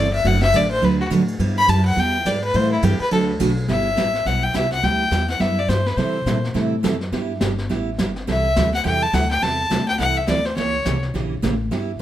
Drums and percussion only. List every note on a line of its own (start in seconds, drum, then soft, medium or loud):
0.13 ride medium
0.25 ride medium
0.41 snare medium
0.53 hi-hat pedal medium
0.53 ride medium
0.71 ride medium
0.83 ride medium
1.11 hi-hat pedal medium
1.11 ride medium
1.28 ride medium
1.40 ride medium
1.68 hi-hat pedal medium
1.68 ride medium
1.86 ride soft
1.97 ride medium
2.25 hi-hat pedal medium
2.25 ride medium
2.42 ride medium
2.54 ride medium
2.82 hi-hat pedal medium
2.82 ride medium
3.00 ride medium
3.11 ride medium
3.40 hi-hat pedal medium
3.40 ride medium
3.57 ride medium
3.68 brush sweep medium
3.68 snare soft
3.97 snare medium
3.97 hi-hat pedal medium
4.14 snare soft
4.26 brush sweep medium
4.26 snare soft
4.54 snare medium
4.54 hi-hat pedal medium
4.71 snare soft
4.83 brush sweep soft
4.83 snare soft
5.12 snare medium
5.12 hi-hat pedal medium
5.29 snare soft
5.40 brush sweep soft
5.40 snare soft
5.69 snare medium
5.69 hi-hat pedal medium
5.86 snare soft
5.98 brush sweep medium
5.98 snare soft
6.27 snare medium
6.27 hi-hat pedal medium
6.44 snare soft
6.55 brush sweep soft
6.55 snare soft
6.84 snare medium
6.84 hi-hat pedal medium
7.01 snare soft
7.12 brush sweep soft
7.12 snare soft
7.41 snare medium
7.41 hi-hat pedal medium
7.58 snare soft
7.70 brush sweep soft
7.70 snare soft
7.98 snare medium
7.98 hi-hat pedal medium
8.16 snare soft
8.28 brush sweep soft
8.28 snare soft
8.56 snare medium
8.56 hi-hat pedal medium
8.74 snare soft
8.85 brush sweep medium
8.85 snare soft
9.13 snare medium
9.13 hi-hat pedal medium
9.31 snare soft
9.43 brush sweep medium
9.43 snare soft
9.71 snare medium
9.71 hi-hat pedal medium
9.88 snare soft
9.99 brush sweep soft
9.99 snare soft
10.27 snare medium
10.27 hi-hat pedal medium
10.45 snare soft
10.56 brush sweep soft
10.56 snare soft
10.85 snare medium
10.85 hi-hat pedal medium
11.03 snare soft
11.14 brush sweep soft
11.14 snare soft
11.43 snare medium
11.43 hi-hat pedal medium
11.71 brush sweep soft
11.71 snare soft